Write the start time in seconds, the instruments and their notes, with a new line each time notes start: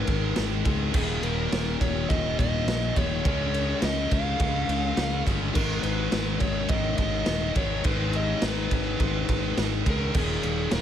Already playing: overdriven electric guitar G#2 D#3 G#3, distorted electric guitar G#2 D#3 G#3, lead electric guitar B4
0.07 fingered electric bass G#1, lead electric guitar A#4, kick, ride
0.36 fingered electric bass G#1, snare, ride
0.64 fingered electric bass C#2, overdriven electric guitar G#2 D#3 G#3, kick, ride
0.92 fingered electric bass D#1, overdriven electric guitar D#2 A#2 D#3, lead electric guitar G#4, kick, crash
1.22 fingered electric bass D#1, lead electric guitar A#4, ride
1.52 fingered electric bass D#1, snare, ride
1.81 fingered electric bass D#1, lead electric guitar C#5, kick, ride
2.09 fingered electric bass D#1, distorted electric guitar D#2 A#2 D#3, lead electric guitar D#5, kick, ride
2.39 fingered electric bass D#1, lead electric guitar D#5, kick, ride
2.66 fingered electric bass A#1, snare, ride
2.95 fingered electric bass D#1, overdriven electric guitar D#2 A#2 D#3, lead electric guitar C#5, kick, ride
3.24 fingered electric bass C#2, overdriven electric guitar C#3 G#3 C#4, lead electric guitar C#5, kick, ride
3.54 ride
3.82 fingered electric bass C#2, lead electric guitar D#5, snare, ride
4.11 fingered electric bass C#2, lead electric guitar F5, kick, ride
4.40 fingered electric bass C#2, distorted electric guitar C#3 G#3 C#4, kick, ride
4.68 fingered electric bass C#2, ride
4.97 fingered electric bass C#2, snare, ride
5.27 fingered electric bass G1, overdriven electric guitar C#3 G#3 C#4, kick, ride
5.54 fingered electric bass G#1, overdriven electric guitar G#2 D#3 G#3, lead electric guitar A#4, kick, crash
5.83 fingered electric bass G#1, lead electric guitar B4, ride
6.12 fingered electric bass G#1, snare, ride
6.40 fingered electric bass G#1, lead electric guitar C#5, kick, ride
6.68 fingered electric bass G#1, distorted electric guitar G#2 D#3 G#3, lead electric guitar D#5, kick, ride
6.97 fingered electric bass G#1, lead electric guitar D#5, kick, ride
7.26 fingered electric bass D#1, snare, ride
7.55 fingered electric bass G#1, overdriven electric guitar G#2 D#3 G#3, lead electric guitar C#5, kick, ride
7.84 fingered electric bass G#1, overdriven electric guitar G#2 D#3 G#3, lead electric guitar B4, kick, ride
8.13 lead electric guitar D#5, ride
8.42 fingered electric bass G#1, lead electric guitar B4, snare, ride
8.71 fingered electric bass G#1, lead electric guitar B4, kick, ride
8.99 fingered electric bass G#1, distorted electric guitar G#2 D#3 G#3, kick, ride
9.28 fingered electric bass G#1, kick, ride
9.57 fingered electric bass G#1, snare, ride
9.86 fingered electric bass C#2, overdriven electric guitar G#2 D#3 G#3, kick, ride
9.90 lead electric guitar A#4
10.14 fingered electric bass D#1, overdriven electric guitar D#2 A#2 D#3, lead electric guitar G#4, kick, crash
10.43 fingered electric bass D#1, ride
10.71 fingered electric bass D#1, lead electric guitar A#4, snare, ride